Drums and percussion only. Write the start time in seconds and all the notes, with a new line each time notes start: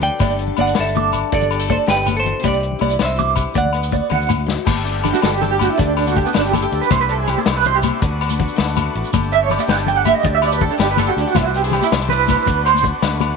0.01 closed hi-hat, low conga
0.12 low conga
0.20 kick, closed hi-hat, high conga, low agogo, shekere
0.39 closed hi-hat
0.48 low conga
0.57 closed hi-hat, high conga, low agogo
0.67 shekere
0.75 snare, closed hi-hat, low agogo
0.88 shekere
0.95 closed hi-hat, high conga, low conga
1.13 closed hi-hat, low agogo, shekere
1.32 kick, closed hi-hat, high conga, shekere
1.41 low conga, shekere
1.51 closed hi-hat, low agogo
1.60 shekere
1.70 kick, closed hi-hat, high conga
1.79 low conga
1.88 snare, closed hi-hat, low conga, low agogo, shekere
2.06 closed hi-hat, high conga, low conga, low agogo, shekere
2.16 shekere
2.26 closed hi-hat, low conga
2.37 low conga
2.44 kick, closed hi-hat, high conga, low agogo, shekere
2.53 low conga, shekere
2.63 closed hi-hat
2.72 low conga
2.81 closed hi-hat, high conga, low conga, low agogo
2.90 shekere
2.99 snare, closed hi-hat, low conga, low agogo
3.19 closed hi-hat, high conga, low conga
3.36 kick, closed hi-hat, low agogo, shekere
3.55 kick, closed hi-hat, high conga, shekere
3.66 low conga
3.73 closed hi-hat, low agogo
3.83 shekere
3.92 kick, closed hi-hat, high conga, low conga
4.10 high tom, low conga, low agogo
4.22 shekere
4.29 mid tom, high conga, low agogo, shekere
4.40 low conga
4.48 snare
4.58 low conga
4.67 kick, crash, high conga, low conga, low agogo, shekere
4.78 shekere
4.87 closed hi-hat
5.04 closed hi-hat, low conga, low agogo, shekere
5.14 high conga, shekere
5.22 snare, closed hi-hat, low agogo
5.42 closed hi-hat, low conga
5.59 closed hi-hat, high conga, low agogo, shekere
5.79 kick, closed hi-hat, low conga
5.97 closed hi-hat, low conga, low agogo
6.07 high conga, shekere
6.16 kick, closed hi-hat, low conga
6.26 shekere
6.34 snare, closed hi-hat, low agogo
6.46 shekere
6.53 closed hi-hat, high conga, low conga, low agogo, shekere
6.72 closed hi-hat
6.83 low conga, shekere
6.90 kick, closed hi-hat, high conga, low conga, low agogo, shekere
7.01 shekere
7.09 closed hi-hat
7.27 closed hi-hat, low conga, low agogo, shekere
7.38 high conga
7.46 snare, closed hi-hat, low agogo
7.64 closed hi-hat, low conga
7.83 closed hi-hat, high conga, low agogo, shekere
8.02 kick, closed hi-hat, low conga
8.21 closed hi-hat, low conga, low agogo
8.30 high conga, shekere
8.40 kick, closed hi-hat, low conga
8.48 shekere
8.58 snare, closed hi-hat, low agogo
8.67 shekere
8.77 closed hi-hat, high conga, low conga, low agogo, shekere
8.95 closed hi-hat
9.05 low conga, shekere
9.13 kick, closed hi-hat, high conga, low conga, low agogo, shekere
9.23 shekere
9.33 closed hi-hat
9.50 closed hi-hat, low conga, low agogo, shekere
9.59 high conga, shekere
9.69 snare, closed hi-hat, low agogo
9.87 closed hi-hat, low conga
10.05 closed hi-hat, high conga, low agogo, shekere
10.24 kick, closed hi-hat, low conga
10.42 closed hi-hat, low conga, low agogo
10.52 shekere
10.61 kick, closed hi-hat, low conga
10.71 shekere
10.80 snare, closed hi-hat, low agogo
10.90 shekere
10.97 closed hi-hat, high conga, low conga, low agogo, shekere
11.18 closed hi-hat
11.26 low conga, shekere
11.35 kick, closed hi-hat, high conga, low conga, low agogo, shekere
11.45 low conga
11.55 closed hi-hat
11.64 shekere
11.71 closed hi-hat, low conga, low agogo
11.82 high conga, low conga, shekere
11.92 snare, closed hi-hat, low agogo
12.00 low conga
12.09 closed hi-hat, low conga
12.19 low conga
12.28 kick, closed hi-hat, high conga, low agogo, shekere
12.46 kick, closed hi-hat, low conga, shekere
12.66 closed hi-hat, low agogo, shekere
12.75 high conga, shekere
12.83 kick, closed hi-hat, low conga, shekere
13.02 snare, closed hi-hat, low agogo
13.20 closed hi-hat, high conga, low conga, low agogo